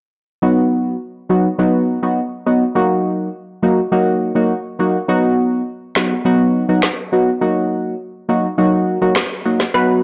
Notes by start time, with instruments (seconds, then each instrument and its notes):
0.42 synth stab F#3 B3 D#4 F#4
1.29 synth stab F#3 B3 D#4 F#4
1.58 synth stab F#3 B3 D#4 F#4
2.02 synth stab F#3 B3 D#4 F#4
2.46 synth stab F#3 B3 D#4 F#4
2.75 synth stab F#3 A#3 D#4 F#4
3.63 synth stab F#3 A#3 D#4 F#4
3.92 synth stab F#3 A#3 D#4 F#4
4.35 synth stab F#3 A#3 D#4 F#4
4.79 synth stab F#3 A#3 D#4 F#4
5.08 synth stab F#3 B3 D#4 F#4
5.95 synth stab F#3 B3 D#4 F#4, finger snap, snare
6.25 synth stab F#3 B3 D#4 F#4
6.69 synth stab F#3 B3 D#4 F#4
6.82 finger snap, cross-stick, snare
7.12 synth stab F#3 B3 D#4 F#4
7.41 synth stab F#3 A#3 D#4 F#4
8.29 synth stab F#3 A#3 D#4 F#4
8.58 synth stab F#3 A#3 D#4 F#4
9.01 synth stab F#3 A#3 D#4 F#4
9.15 finger snap, cross-stick, snare
9.45 synth stab F#3 A#3 D#4 F#4
9.60 snare
9.74 synth stab F#3 B3 D#4 F#4, steel pan B4